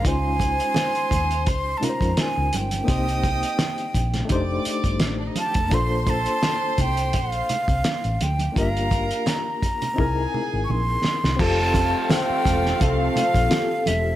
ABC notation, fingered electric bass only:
X:1
M:4/4
L:1/16
Q:"Swing 16ths" 1/4=85
K:F
V:1 name="Fingered electric bass" clef=bass
_D,,4 z2 _E,,2 D,,2 z F,, z D,, G,,,2 | C,,4 z2 B,,,2 F,,,2 z G,,, A,,,2 z F,,, | B,,,4 z2 C,,2 B,,,2 z C,, z A,,, D,,2 | G,,,4 z4 C,,2 z ^G,,, B,,,2 z C,, |
F,,,4 z2 E,,,2 C,,2 z B,,, z2 E,,,2 |]